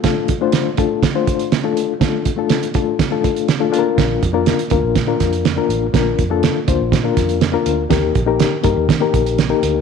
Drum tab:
HH |x-x-x-x-x-xxx-x-|x-x-xxx-x-xxx-x-|x-x-xxx-x-xxx-x-|x-x-x-x-x-xxx-x-|
SD |o---o---o---o---|o---o---o---o---|o---o---o-o-o---|o---o---o-o-o---|
BD |o-o---o-o-o-----|o-o---o-o-o-----|o-o---o-o-o-----|o-o---o-o-o-----|

HH |x-x-x-x-x-xxx-x-|
SD |o---o---o---o---|
BD |o-o---o-o-o-----|